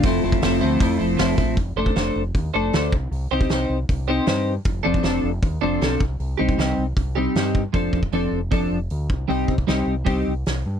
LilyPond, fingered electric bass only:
\new Staff \with { instrumentName = "Fingered electric bass" } { \clef bass \time 4/4 \key f \major \tempo 4 = 156 f,,8 f,,8 f,,8 d,8 f,8 f,,8 f,,8 bes,,8 | \key f \mixolydian f,,8 f,,8 f,,8 f,,8 ees,8 f,,8 d,8 c,8 | c,8 c,8 c,8 c,8 c,4 g,4 | f,,8 f,,8 f,,8 f,,8 ees,8 f,,8 b,,8 c,8 |
c,8 c,8 c,8 c,8 c,4 g,4 | f,,8 f,,8 f,,8 f,,8 f,,8 f,,8 d,8 c,8 | c,8 c,8 c,8 c,8 c,8 c,8 c,8 g,8 | }